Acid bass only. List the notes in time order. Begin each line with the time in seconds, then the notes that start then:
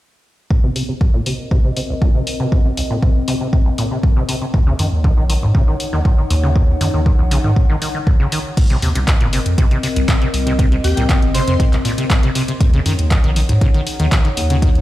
0.64 C3
0.76 C3
0.89 C3
1.01 C2
1.14 A#2
1.26 C3
1.51 C3
1.64 C3
1.77 C3
1.90 C2
2.02 A#2
2.15 C3
2.40 C3
2.52 C3
2.65 C3
2.77 C2
2.90 A#2
3.03 C3
3.28 C3
3.41 C3
3.53 C3
3.66 C2
3.78 A#2
3.91 C3
4.16 C3
4.29 C3
4.42 C3
4.54 D#2
4.67 C#3
4.79 D#3
5.04 D#3
5.17 D#3
5.29 D#3
5.43 D#2
5.55 C#3
5.68 D#3
5.93 D#3
6.05 D#3
6.18 D#3
6.30 D#2
6.43 C#3
6.56 D#3
6.81 D#3
6.94 D#3
7.06 D#3
7.19 D#2
7.31 C#3
7.44 D#3
7.69 D#3
7.82 D#3
7.95 D#3
8.07 D#2
8.20 C#3
8.32 D#3
8.70 C3
8.82 C3
8.95 C3
9.08 C2
9.21 A#2
9.33 C3
9.58 C3
9.71 C3
9.83 C3
9.96 C2
10.08 A#2
10.21 C3
10.47 C3
10.59 C3
10.72 C3
10.84 C2
10.97 A#2
11.09 C3
11.34 C3
11.47 C3
11.60 C3
11.73 C2
11.85 A#2
11.98 C3
12.23 C3
12.35 C3
12.48 C3
12.61 D#2
12.74 C#3
12.86 D#3
13.11 D#3
13.24 D#3
13.36 D#3
13.49 D#2
13.61 C#3
13.74 D#3
14.00 D#3
14.12 D#3
14.25 D#3
14.37 D#2
14.50 C#3
14.62 D#3